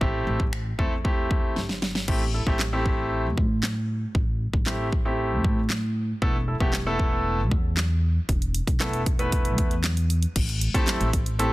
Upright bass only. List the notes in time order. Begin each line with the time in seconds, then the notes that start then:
0.01 A1
0.27 A1
0.79 E2
1.56 G1
2.08 A1
2.47 A1
3.38 A2
4.15 A1
4.53 A1
5.45 A2
6.22 E1
6.60 E1
7.52 E2
8.29 E1
8.67 E1
9.58 E2
10.36 A1
10.74 E2
11.01 A1